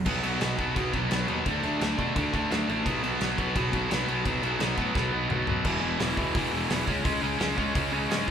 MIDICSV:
0, 0, Header, 1, 4, 480
1, 0, Start_track
1, 0, Tempo, 349650
1, 85, Time_signature, 4, 2, 24, 8
1, 11404, End_track
2, 0, Start_track
2, 0, Title_t, "Distorted electric guitar"
2, 0, Program_c, 0, 30
2, 78, Note_on_c, 0, 47, 94
2, 91, Note_on_c, 0, 54, 107
2, 97, Note_on_c, 0, 59, 101
2, 299, Note_off_c, 0, 47, 0
2, 315, Note_on_c, 0, 47, 84
2, 321, Note_off_c, 0, 59, 0
2, 327, Note_off_c, 0, 54, 0
2, 332, Note_on_c, 0, 54, 85
2, 337, Note_on_c, 0, 59, 92
2, 543, Note_off_c, 0, 47, 0
2, 560, Note_on_c, 0, 47, 77
2, 563, Note_off_c, 0, 59, 0
2, 564, Note_off_c, 0, 54, 0
2, 569, Note_on_c, 0, 54, 79
2, 579, Note_on_c, 0, 59, 89
2, 782, Note_off_c, 0, 47, 0
2, 798, Note_on_c, 0, 47, 81
2, 800, Note_off_c, 0, 54, 0
2, 800, Note_off_c, 0, 59, 0
2, 806, Note_on_c, 0, 54, 97
2, 817, Note_on_c, 0, 59, 97
2, 1023, Note_off_c, 0, 47, 0
2, 1040, Note_on_c, 0, 47, 93
2, 1042, Note_off_c, 0, 59, 0
2, 1045, Note_off_c, 0, 54, 0
2, 1050, Note_on_c, 0, 54, 105
2, 1059, Note_on_c, 0, 59, 100
2, 1257, Note_off_c, 0, 47, 0
2, 1274, Note_on_c, 0, 47, 90
2, 1280, Note_off_c, 0, 54, 0
2, 1281, Note_off_c, 0, 59, 0
2, 1285, Note_on_c, 0, 54, 86
2, 1297, Note_on_c, 0, 59, 102
2, 1492, Note_off_c, 0, 47, 0
2, 1508, Note_on_c, 0, 47, 93
2, 1512, Note_off_c, 0, 59, 0
2, 1519, Note_off_c, 0, 54, 0
2, 1524, Note_on_c, 0, 54, 96
2, 1529, Note_on_c, 0, 59, 88
2, 1730, Note_off_c, 0, 47, 0
2, 1747, Note_on_c, 0, 47, 82
2, 1753, Note_off_c, 0, 59, 0
2, 1754, Note_off_c, 0, 54, 0
2, 1759, Note_on_c, 0, 54, 88
2, 1769, Note_on_c, 0, 59, 96
2, 1981, Note_off_c, 0, 47, 0
2, 1992, Note_off_c, 0, 59, 0
2, 2000, Note_on_c, 0, 50, 88
2, 2005, Note_off_c, 0, 54, 0
2, 2011, Note_on_c, 0, 57, 113
2, 2017, Note_on_c, 0, 62, 118
2, 2222, Note_off_c, 0, 50, 0
2, 2232, Note_off_c, 0, 57, 0
2, 2238, Note_on_c, 0, 50, 81
2, 2241, Note_off_c, 0, 62, 0
2, 2249, Note_on_c, 0, 57, 93
2, 2257, Note_on_c, 0, 62, 90
2, 2458, Note_off_c, 0, 50, 0
2, 2473, Note_off_c, 0, 57, 0
2, 2475, Note_on_c, 0, 50, 81
2, 2483, Note_off_c, 0, 62, 0
2, 2489, Note_on_c, 0, 57, 88
2, 2499, Note_on_c, 0, 62, 82
2, 2703, Note_off_c, 0, 50, 0
2, 2714, Note_off_c, 0, 57, 0
2, 2720, Note_on_c, 0, 50, 80
2, 2723, Note_off_c, 0, 62, 0
2, 2731, Note_on_c, 0, 57, 89
2, 2740, Note_on_c, 0, 62, 92
2, 2932, Note_off_c, 0, 50, 0
2, 2947, Note_off_c, 0, 57, 0
2, 2949, Note_on_c, 0, 50, 102
2, 2955, Note_off_c, 0, 62, 0
2, 2964, Note_on_c, 0, 57, 105
2, 2972, Note_on_c, 0, 62, 98
2, 3176, Note_off_c, 0, 50, 0
2, 3187, Note_off_c, 0, 57, 0
2, 3192, Note_on_c, 0, 50, 79
2, 3200, Note_off_c, 0, 62, 0
2, 3204, Note_on_c, 0, 57, 82
2, 3216, Note_on_c, 0, 62, 88
2, 3421, Note_off_c, 0, 50, 0
2, 3429, Note_off_c, 0, 57, 0
2, 3438, Note_on_c, 0, 50, 86
2, 3440, Note_off_c, 0, 62, 0
2, 3446, Note_on_c, 0, 57, 81
2, 3456, Note_on_c, 0, 62, 99
2, 3657, Note_off_c, 0, 50, 0
2, 3666, Note_off_c, 0, 57, 0
2, 3673, Note_on_c, 0, 50, 78
2, 3675, Note_off_c, 0, 62, 0
2, 3682, Note_on_c, 0, 57, 101
2, 3692, Note_on_c, 0, 62, 111
2, 3901, Note_off_c, 0, 50, 0
2, 3906, Note_on_c, 0, 47, 99
2, 3907, Note_off_c, 0, 57, 0
2, 3912, Note_off_c, 0, 62, 0
2, 3916, Note_on_c, 0, 54, 102
2, 3925, Note_on_c, 0, 59, 125
2, 4140, Note_off_c, 0, 47, 0
2, 4145, Note_on_c, 0, 47, 90
2, 4149, Note_off_c, 0, 54, 0
2, 4155, Note_on_c, 0, 54, 98
2, 4156, Note_off_c, 0, 59, 0
2, 4162, Note_on_c, 0, 59, 101
2, 4392, Note_off_c, 0, 47, 0
2, 4398, Note_on_c, 0, 47, 75
2, 4403, Note_off_c, 0, 54, 0
2, 4408, Note_on_c, 0, 54, 77
2, 4411, Note_off_c, 0, 59, 0
2, 4417, Note_on_c, 0, 59, 90
2, 4628, Note_off_c, 0, 47, 0
2, 4634, Note_on_c, 0, 47, 78
2, 4640, Note_off_c, 0, 54, 0
2, 4646, Note_on_c, 0, 54, 95
2, 4648, Note_off_c, 0, 59, 0
2, 4653, Note_on_c, 0, 59, 91
2, 4863, Note_off_c, 0, 47, 0
2, 4870, Note_off_c, 0, 54, 0
2, 4879, Note_on_c, 0, 47, 92
2, 4886, Note_on_c, 0, 54, 105
2, 4889, Note_off_c, 0, 59, 0
2, 4894, Note_on_c, 0, 59, 114
2, 5099, Note_off_c, 0, 47, 0
2, 5110, Note_off_c, 0, 54, 0
2, 5115, Note_on_c, 0, 47, 91
2, 5126, Note_on_c, 0, 54, 83
2, 5134, Note_off_c, 0, 59, 0
2, 5139, Note_on_c, 0, 59, 95
2, 5335, Note_off_c, 0, 47, 0
2, 5348, Note_off_c, 0, 54, 0
2, 5351, Note_on_c, 0, 47, 92
2, 5364, Note_on_c, 0, 54, 96
2, 5370, Note_off_c, 0, 59, 0
2, 5376, Note_on_c, 0, 59, 91
2, 5580, Note_off_c, 0, 47, 0
2, 5587, Note_off_c, 0, 54, 0
2, 5597, Note_on_c, 0, 47, 87
2, 5604, Note_on_c, 0, 54, 88
2, 5605, Note_off_c, 0, 59, 0
2, 5610, Note_on_c, 0, 59, 97
2, 5825, Note_off_c, 0, 47, 0
2, 5836, Note_off_c, 0, 54, 0
2, 5842, Note_off_c, 0, 59, 0
2, 5842, Note_on_c, 0, 47, 109
2, 5852, Note_on_c, 0, 54, 105
2, 5859, Note_on_c, 0, 59, 104
2, 6055, Note_off_c, 0, 47, 0
2, 6070, Note_off_c, 0, 54, 0
2, 6071, Note_on_c, 0, 47, 81
2, 6075, Note_off_c, 0, 59, 0
2, 6086, Note_on_c, 0, 54, 84
2, 6092, Note_on_c, 0, 59, 91
2, 6297, Note_off_c, 0, 47, 0
2, 6306, Note_off_c, 0, 54, 0
2, 6313, Note_on_c, 0, 47, 73
2, 6317, Note_off_c, 0, 59, 0
2, 6322, Note_on_c, 0, 54, 82
2, 6334, Note_on_c, 0, 59, 80
2, 6529, Note_off_c, 0, 47, 0
2, 6545, Note_off_c, 0, 54, 0
2, 6545, Note_on_c, 0, 47, 92
2, 6549, Note_off_c, 0, 59, 0
2, 6562, Note_on_c, 0, 54, 95
2, 6566, Note_on_c, 0, 59, 88
2, 6766, Note_off_c, 0, 47, 0
2, 6782, Note_off_c, 0, 54, 0
2, 6782, Note_on_c, 0, 47, 93
2, 6790, Note_off_c, 0, 59, 0
2, 6798, Note_on_c, 0, 54, 98
2, 6807, Note_on_c, 0, 59, 108
2, 7011, Note_off_c, 0, 47, 0
2, 7017, Note_off_c, 0, 54, 0
2, 7027, Note_on_c, 0, 47, 89
2, 7029, Note_off_c, 0, 59, 0
2, 7034, Note_on_c, 0, 54, 90
2, 7045, Note_on_c, 0, 59, 96
2, 7256, Note_off_c, 0, 47, 0
2, 7268, Note_off_c, 0, 54, 0
2, 7272, Note_on_c, 0, 47, 83
2, 7273, Note_off_c, 0, 59, 0
2, 7284, Note_on_c, 0, 54, 90
2, 7289, Note_on_c, 0, 59, 89
2, 7492, Note_off_c, 0, 47, 0
2, 7507, Note_off_c, 0, 54, 0
2, 7509, Note_on_c, 0, 47, 87
2, 7519, Note_off_c, 0, 59, 0
2, 7524, Note_on_c, 0, 54, 82
2, 7536, Note_on_c, 0, 59, 91
2, 7740, Note_off_c, 0, 47, 0
2, 7747, Note_off_c, 0, 54, 0
2, 7753, Note_off_c, 0, 59, 0
2, 7754, Note_on_c, 0, 40, 108
2, 7767, Note_on_c, 0, 47, 106
2, 7777, Note_on_c, 0, 52, 123
2, 7965, Note_off_c, 0, 40, 0
2, 7972, Note_off_c, 0, 47, 0
2, 7982, Note_on_c, 0, 40, 79
2, 7988, Note_on_c, 0, 47, 86
2, 7997, Note_off_c, 0, 52, 0
2, 8002, Note_on_c, 0, 52, 107
2, 8212, Note_off_c, 0, 40, 0
2, 8222, Note_off_c, 0, 47, 0
2, 8228, Note_on_c, 0, 40, 90
2, 8238, Note_off_c, 0, 52, 0
2, 8239, Note_on_c, 0, 47, 93
2, 8244, Note_on_c, 0, 52, 108
2, 8449, Note_off_c, 0, 40, 0
2, 8463, Note_off_c, 0, 47, 0
2, 8465, Note_on_c, 0, 40, 94
2, 8479, Note_on_c, 0, 47, 91
2, 8481, Note_off_c, 0, 52, 0
2, 8487, Note_on_c, 0, 52, 90
2, 8701, Note_off_c, 0, 40, 0
2, 8706, Note_off_c, 0, 47, 0
2, 8718, Note_on_c, 0, 40, 91
2, 8723, Note_on_c, 0, 47, 99
2, 8729, Note_off_c, 0, 52, 0
2, 8735, Note_on_c, 0, 52, 122
2, 8933, Note_off_c, 0, 40, 0
2, 8945, Note_off_c, 0, 47, 0
2, 8950, Note_on_c, 0, 40, 86
2, 8962, Note_on_c, 0, 47, 89
2, 8965, Note_off_c, 0, 52, 0
2, 8971, Note_on_c, 0, 52, 95
2, 9179, Note_off_c, 0, 40, 0
2, 9191, Note_off_c, 0, 47, 0
2, 9195, Note_on_c, 0, 40, 101
2, 9208, Note_on_c, 0, 47, 99
2, 9211, Note_off_c, 0, 52, 0
2, 9216, Note_on_c, 0, 52, 127
2, 9423, Note_off_c, 0, 40, 0
2, 9430, Note_off_c, 0, 47, 0
2, 9435, Note_on_c, 0, 49, 97
2, 9440, Note_off_c, 0, 52, 0
2, 9445, Note_on_c, 0, 56, 104
2, 9458, Note_on_c, 0, 61, 116
2, 9653, Note_off_c, 0, 49, 0
2, 9657, Note_off_c, 0, 56, 0
2, 9669, Note_on_c, 0, 49, 103
2, 9674, Note_on_c, 0, 56, 114
2, 9679, Note_off_c, 0, 61, 0
2, 9685, Note_on_c, 0, 61, 109
2, 9898, Note_off_c, 0, 49, 0
2, 9904, Note_off_c, 0, 56, 0
2, 9914, Note_on_c, 0, 49, 76
2, 9920, Note_on_c, 0, 56, 95
2, 9927, Note_off_c, 0, 61, 0
2, 9933, Note_on_c, 0, 61, 89
2, 10131, Note_off_c, 0, 49, 0
2, 10147, Note_off_c, 0, 56, 0
2, 10147, Note_on_c, 0, 49, 96
2, 10162, Note_off_c, 0, 61, 0
2, 10163, Note_on_c, 0, 56, 92
2, 10167, Note_on_c, 0, 61, 103
2, 10369, Note_off_c, 0, 49, 0
2, 10381, Note_off_c, 0, 56, 0
2, 10386, Note_on_c, 0, 49, 88
2, 10398, Note_on_c, 0, 56, 105
2, 10402, Note_off_c, 0, 61, 0
2, 10407, Note_on_c, 0, 61, 100
2, 10618, Note_off_c, 0, 49, 0
2, 10632, Note_off_c, 0, 56, 0
2, 10634, Note_on_c, 0, 49, 95
2, 10640, Note_off_c, 0, 61, 0
2, 10648, Note_on_c, 0, 56, 98
2, 10657, Note_on_c, 0, 61, 112
2, 10858, Note_off_c, 0, 49, 0
2, 10874, Note_on_c, 0, 49, 88
2, 10877, Note_off_c, 0, 56, 0
2, 10883, Note_off_c, 0, 61, 0
2, 10893, Note_on_c, 0, 56, 91
2, 10900, Note_on_c, 0, 61, 100
2, 11094, Note_off_c, 0, 49, 0
2, 11107, Note_off_c, 0, 56, 0
2, 11110, Note_on_c, 0, 49, 111
2, 11114, Note_off_c, 0, 61, 0
2, 11124, Note_on_c, 0, 56, 98
2, 11131, Note_on_c, 0, 61, 99
2, 11342, Note_off_c, 0, 49, 0
2, 11349, Note_off_c, 0, 56, 0
2, 11353, Note_off_c, 0, 61, 0
2, 11353, Note_on_c, 0, 45, 109
2, 11404, Note_off_c, 0, 45, 0
2, 11404, End_track
3, 0, Start_track
3, 0, Title_t, "Picked electric bass"
3, 0, Program_c, 1, 34
3, 84, Note_on_c, 1, 35, 89
3, 262, Note_off_c, 1, 35, 0
3, 322, Note_on_c, 1, 35, 86
3, 500, Note_off_c, 1, 35, 0
3, 555, Note_on_c, 1, 35, 84
3, 736, Note_off_c, 1, 35, 0
3, 805, Note_on_c, 1, 35, 86
3, 982, Note_off_c, 1, 35, 0
3, 1045, Note_on_c, 1, 35, 90
3, 1222, Note_off_c, 1, 35, 0
3, 1286, Note_on_c, 1, 35, 92
3, 1463, Note_off_c, 1, 35, 0
3, 1526, Note_on_c, 1, 35, 96
3, 1703, Note_off_c, 1, 35, 0
3, 1765, Note_on_c, 1, 39, 90
3, 1942, Note_off_c, 1, 39, 0
3, 2002, Note_on_c, 1, 38, 88
3, 2180, Note_off_c, 1, 38, 0
3, 2235, Note_on_c, 1, 38, 85
3, 2415, Note_off_c, 1, 38, 0
3, 2479, Note_on_c, 1, 38, 84
3, 2657, Note_off_c, 1, 38, 0
3, 2725, Note_on_c, 1, 47, 91
3, 2901, Note_off_c, 1, 47, 0
3, 2968, Note_on_c, 1, 38, 88
3, 3143, Note_off_c, 1, 38, 0
3, 3209, Note_on_c, 1, 38, 88
3, 3383, Note_off_c, 1, 38, 0
3, 3446, Note_on_c, 1, 38, 89
3, 3622, Note_off_c, 1, 38, 0
3, 3688, Note_on_c, 1, 33, 85
3, 3863, Note_off_c, 1, 33, 0
3, 3929, Note_on_c, 1, 35, 96
3, 4103, Note_off_c, 1, 35, 0
3, 4165, Note_on_c, 1, 35, 92
3, 4341, Note_off_c, 1, 35, 0
3, 4410, Note_on_c, 1, 35, 92
3, 4584, Note_off_c, 1, 35, 0
3, 4642, Note_on_c, 1, 35, 81
3, 4819, Note_off_c, 1, 35, 0
3, 4881, Note_on_c, 1, 35, 80
3, 5058, Note_off_c, 1, 35, 0
3, 5125, Note_on_c, 1, 35, 93
3, 5300, Note_off_c, 1, 35, 0
3, 5367, Note_on_c, 1, 35, 94
3, 5542, Note_off_c, 1, 35, 0
3, 5596, Note_on_c, 1, 35, 90
3, 5775, Note_off_c, 1, 35, 0
3, 5840, Note_on_c, 1, 35, 93
3, 6018, Note_off_c, 1, 35, 0
3, 6075, Note_on_c, 1, 35, 92
3, 6254, Note_off_c, 1, 35, 0
3, 6318, Note_on_c, 1, 35, 87
3, 6496, Note_off_c, 1, 35, 0
3, 6561, Note_on_c, 1, 45, 84
3, 6738, Note_off_c, 1, 45, 0
3, 6795, Note_on_c, 1, 35, 96
3, 6974, Note_off_c, 1, 35, 0
3, 7036, Note_on_c, 1, 35, 90
3, 7215, Note_off_c, 1, 35, 0
3, 7280, Note_on_c, 1, 35, 95
3, 7457, Note_off_c, 1, 35, 0
3, 7528, Note_on_c, 1, 42, 92
3, 7703, Note_off_c, 1, 42, 0
3, 7755, Note_on_c, 1, 28, 102
3, 7926, Note_off_c, 1, 28, 0
3, 7999, Note_on_c, 1, 28, 90
3, 8168, Note_off_c, 1, 28, 0
3, 8238, Note_on_c, 1, 28, 87
3, 8408, Note_off_c, 1, 28, 0
3, 8478, Note_on_c, 1, 37, 94
3, 8648, Note_off_c, 1, 37, 0
3, 8719, Note_on_c, 1, 28, 88
3, 8889, Note_off_c, 1, 28, 0
3, 8954, Note_on_c, 1, 28, 89
3, 9125, Note_off_c, 1, 28, 0
3, 9200, Note_on_c, 1, 28, 94
3, 9370, Note_off_c, 1, 28, 0
3, 9436, Note_on_c, 1, 37, 87
3, 9607, Note_off_c, 1, 37, 0
3, 9679, Note_on_c, 1, 37, 93
3, 9849, Note_off_c, 1, 37, 0
3, 9917, Note_on_c, 1, 37, 95
3, 10088, Note_off_c, 1, 37, 0
3, 10161, Note_on_c, 1, 37, 92
3, 10330, Note_off_c, 1, 37, 0
3, 10405, Note_on_c, 1, 37, 85
3, 10573, Note_off_c, 1, 37, 0
3, 10642, Note_on_c, 1, 37, 82
3, 10811, Note_off_c, 1, 37, 0
3, 10883, Note_on_c, 1, 37, 105
3, 11052, Note_off_c, 1, 37, 0
3, 11117, Note_on_c, 1, 44, 92
3, 11289, Note_off_c, 1, 44, 0
3, 11404, End_track
4, 0, Start_track
4, 0, Title_t, "Drums"
4, 78, Note_on_c, 9, 49, 111
4, 78, Note_on_c, 9, 57, 82
4, 84, Note_on_c, 9, 36, 112
4, 215, Note_off_c, 9, 49, 0
4, 215, Note_off_c, 9, 57, 0
4, 221, Note_off_c, 9, 36, 0
4, 320, Note_on_c, 9, 57, 75
4, 458, Note_off_c, 9, 57, 0
4, 560, Note_on_c, 9, 57, 90
4, 574, Note_on_c, 9, 38, 114
4, 697, Note_off_c, 9, 57, 0
4, 711, Note_off_c, 9, 38, 0
4, 799, Note_on_c, 9, 57, 62
4, 805, Note_on_c, 9, 36, 87
4, 937, Note_off_c, 9, 57, 0
4, 943, Note_off_c, 9, 36, 0
4, 1046, Note_on_c, 9, 36, 111
4, 1046, Note_on_c, 9, 57, 89
4, 1183, Note_off_c, 9, 36, 0
4, 1183, Note_off_c, 9, 57, 0
4, 1282, Note_on_c, 9, 57, 71
4, 1284, Note_on_c, 9, 36, 89
4, 1420, Note_off_c, 9, 57, 0
4, 1422, Note_off_c, 9, 36, 0
4, 1521, Note_on_c, 9, 57, 86
4, 1534, Note_on_c, 9, 38, 113
4, 1658, Note_off_c, 9, 57, 0
4, 1672, Note_off_c, 9, 38, 0
4, 1758, Note_on_c, 9, 57, 62
4, 1895, Note_off_c, 9, 57, 0
4, 2000, Note_on_c, 9, 57, 84
4, 2005, Note_on_c, 9, 36, 109
4, 2137, Note_off_c, 9, 57, 0
4, 2143, Note_off_c, 9, 36, 0
4, 2242, Note_on_c, 9, 57, 67
4, 2379, Note_off_c, 9, 57, 0
4, 2487, Note_on_c, 9, 57, 81
4, 2501, Note_on_c, 9, 38, 114
4, 2624, Note_off_c, 9, 57, 0
4, 2638, Note_off_c, 9, 38, 0
4, 2726, Note_on_c, 9, 57, 55
4, 2727, Note_on_c, 9, 36, 83
4, 2864, Note_off_c, 9, 36, 0
4, 2864, Note_off_c, 9, 57, 0
4, 2966, Note_on_c, 9, 36, 114
4, 2968, Note_on_c, 9, 57, 83
4, 3104, Note_off_c, 9, 36, 0
4, 3105, Note_off_c, 9, 57, 0
4, 3207, Note_on_c, 9, 36, 101
4, 3213, Note_on_c, 9, 57, 58
4, 3344, Note_off_c, 9, 36, 0
4, 3351, Note_off_c, 9, 57, 0
4, 3451, Note_on_c, 9, 57, 76
4, 3464, Note_on_c, 9, 38, 104
4, 3588, Note_off_c, 9, 57, 0
4, 3602, Note_off_c, 9, 38, 0
4, 3698, Note_on_c, 9, 57, 57
4, 3835, Note_off_c, 9, 57, 0
4, 3925, Note_on_c, 9, 36, 112
4, 3928, Note_on_c, 9, 57, 82
4, 4062, Note_off_c, 9, 36, 0
4, 4066, Note_off_c, 9, 57, 0
4, 4167, Note_on_c, 9, 57, 73
4, 4304, Note_off_c, 9, 57, 0
4, 4402, Note_on_c, 9, 57, 86
4, 4415, Note_on_c, 9, 38, 124
4, 4539, Note_off_c, 9, 57, 0
4, 4553, Note_off_c, 9, 38, 0
4, 4644, Note_on_c, 9, 36, 91
4, 4648, Note_on_c, 9, 57, 66
4, 4781, Note_off_c, 9, 36, 0
4, 4786, Note_off_c, 9, 57, 0
4, 4882, Note_on_c, 9, 36, 118
4, 4885, Note_on_c, 9, 57, 93
4, 5020, Note_off_c, 9, 36, 0
4, 5023, Note_off_c, 9, 57, 0
4, 5123, Note_on_c, 9, 57, 71
4, 5124, Note_on_c, 9, 36, 88
4, 5261, Note_off_c, 9, 36, 0
4, 5261, Note_off_c, 9, 57, 0
4, 5367, Note_on_c, 9, 57, 94
4, 5380, Note_on_c, 9, 38, 108
4, 5504, Note_off_c, 9, 57, 0
4, 5518, Note_off_c, 9, 38, 0
4, 5606, Note_on_c, 9, 57, 61
4, 5743, Note_off_c, 9, 57, 0
4, 5842, Note_on_c, 9, 36, 107
4, 5845, Note_on_c, 9, 57, 82
4, 5979, Note_off_c, 9, 36, 0
4, 5982, Note_off_c, 9, 57, 0
4, 6081, Note_on_c, 9, 57, 72
4, 6219, Note_off_c, 9, 57, 0
4, 6316, Note_on_c, 9, 57, 92
4, 6329, Note_on_c, 9, 38, 120
4, 6453, Note_off_c, 9, 57, 0
4, 6467, Note_off_c, 9, 38, 0
4, 6553, Note_on_c, 9, 57, 57
4, 6557, Note_on_c, 9, 36, 86
4, 6690, Note_off_c, 9, 57, 0
4, 6695, Note_off_c, 9, 36, 0
4, 6799, Note_on_c, 9, 36, 123
4, 6815, Note_on_c, 9, 38, 72
4, 6937, Note_off_c, 9, 36, 0
4, 6953, Note_off_c, 9, 38, 0
4, 7276, Note_on_c, 9, 45, 97
4, 7414, Note_off_c, 9, 45, 0
4, 7512, Note_on_c, 9, 43, 99
4, 7650, Note_off_c, 9, 43, 0
4, 7749, Note_on_c, 9, 49, 106
4, 7755, Note_on_c, 9, 36, 112
4, 7886, Note_off_c, 9, 49, 0
4, 7892, Note_off_c, 9, 36, 0
4, 8230, Note_on_c, 9, 46, 72
4, 8244, Note_on_c, 9, 38, 117
4, 8368, Note_off_c, 9, 46, 0
4, 8382, Note_off_c, 9, 38, 0
4, 8474, Note_on_c, 9, 36, 88
4, 8611, Note_off_c, 9, 36, 0
4, 8717, Note_on_c, 9, 36, 126
4, 8717, Note_on_c, 9, 46, 74
4, 8854, Note_off_c, 9, 36, 0
4, 8854, Note_off_c, 9, 46, 0
4, 9194, Note_on_c, 9, 46, 74
4, 9208, Note_on_c, 9, 38, 120
4, 9331, Note_off_c, 9, 46, 0
4, 9345, Note_off_c, 9, 38, 0
4, 9439, Note_on_c, 9, 36, 80
4, 9577, Note_off_c, 9, 36, 0
4, 9679, Note_on_c, 9, 36, 119
4, 9682, Note_on_c, 9, 46, 64
4, 9816, Note_off_c, 9, 36, 0
4, 9819, Note_off_c, 9, 46, 0
4, 10158, Note_on_c, 9, 46, 74
4, 10171, Note_on_c, 9, 38, 119
4, 10295, Note_off_c, 9, 46, 0
4, 10309, Note_off_c, 9, 38, 0
4, 10403, Note_on_c, 9, 36, 80
4, 10540, Note_off_c, 9, 36, 0
4, 10643, Note_on_c, 9, 46, 65
4, 10644, Note_on_c, 9, 36, 117
4, 10780, Note_off_c, 9, 46, 0
4, 10781, Note_off_c, 9, 36, 0
4, 11130, Note_on_c, 9, 46, 64
4, 11144, Note_on_c, 9, 38, 119
4, 11268, Note_off_c, 9, 46, 0
4, 11281, Note_off_c, 9, 38, 0
4, 11404, End_track
0, 0, End_of_file